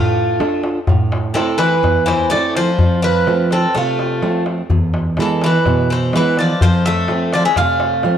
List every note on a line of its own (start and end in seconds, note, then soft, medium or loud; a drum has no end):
0.00 0.38 A2 medium
0.00 0.60 A3 medium
0.00 0.60 F4 medium
0.40 0.78 D4 medium
0.40 0.78 F4 soft
0.40 0.79 A4 medium
0.40 darbuka tek medium
0.51 darbuka tek soft
0.63 darbuka tek medium
0.87 1.35 A2 medium
0.87 darbuka dum medium
1.12 darbuka tek medium
1.24 darbuka tek soft
1.34 1.57 C3 medium
1.34 1.73 A3 soft
1.34 1.74 C4 soft
1.34 1.74 E4 medium
1.34 1.60 A4 loud
1.34 darbuka tek medium
1.58 2.03 E3 medium
1.58 2.08 B4 loud
1.58 darbuka tek medium
1.71 darbuka tek soft
1.83 2.30 E2 medium
1.83 darbuka tek medium
1.83 darbuka dum medium
2.06 2.29 E3 medium
2.06 2.30 C5 medium
2.06 darbuka tek medium
2.30 2.53 A3 medium
2.30 2.70 A3 soft
2.30 2.70 C4 medium
2.30 2.70 E4 medium
2.30 2.54 D5 loud
2.30 darbuka tek medium
2.43 darbuka tek soft
2.55 3.00 F3 medium
2.55 3.01 C5 loud
2.55 darbuka tek medium
2.79 3.25 F2 medium
2.79 darbuka dum medium
3.02 3.47 F3 medium
3.02 3.52 B4 medium
3.02 darbuka tek medium
3.15 darbuka tek soft
3.27 3.66 F3 soft
3.27 3.66 A3 soft
3.27 3.66 C4 medium
3.27 darbuka tek medium
3.51 3.74 C3 medium
3.51 3.74 A4 medium
3.51 darbuka tek medium
3.75 4.22 C3 medium
3.75 4.43 A3 medium
3.75 4.44 F4 medium
3.75 darbuka tek medium
3.99 darbuka tek medium
4.22 4.61 F3 soft
4.22 4.61 A3 soft
4.22 4.61 C4 medium
4.22 darbuka tek medium
4.34 darbuka tek soft
4.46 darbuka tek medium
4.58 darbuka tek soft
4.70 5.17 E2 medium
4.70 darbuka dum medium
4.94 darbuka tek medium
5.05 darbuka tek soft
5.17 5.57 E3 soft
5.17 5.42 E3 medium
5.17 5.57 G#3 soft
5.17 5.57 B3 medium
5.17 darbuka tek medium
5.22 5.45 A4 medium
5.42 5.88 E3 medium
5.42 darbuka tek medium
5.46 5.89 B4 medium
5.54 darbuka tek soft
5.66 6.13 B2 medium
5.66 darbuka tek medium
5.66 darbuka dum medium
5.90 6.12 E3 medium
5.90 6.14 C5 medium
6.13 6.52 E3 medium
6.13 6.37 E3 medium
6.13 6.52 G#3 soft
6.13 6.52 B3 medium
6.13 6.38 B4 medium
6.13 darbuka tek medium
6.25 darbuka tek soft
6.37 6.61 F3 medium
6.37 6.62 D5 medium
6.37 darbuka tek medium
6.61 7.08 F2 medium
6.61 6.85 F3 medium
6.61 6.84 C5 medium
6.61 darbuka dum medium
6.85 7.31 A3 medium
6.85 7.30 E5 loud
6.85 darbuka tek medium
6.97 darbuka tek soft
7.08 7.47 F3 medium
7.08 7.48 A3 soft
7.08 7.48 C4 medium
7.08 darbuka tek medium
7.33 7.45 F3 medium
7.33 7.45 D5 medium
7.33 darbuka tek medium
7.45 7.57 G#3 medium
7.45 7.56 E5 medium
7.45 darbuka tek soft
7.56 8.04 C3 medium
7.56 8.18 A3 medium
7.56 8.18 F5 loud
7.56 darbuka tek medium
7.56 darbuka dum medium
7.80 darbuka tek medium
8.03 8.18 F3 medium
8.03 8.18 A3 medium
8.03 8.18 C4 medium
8.03 darbuka tek medium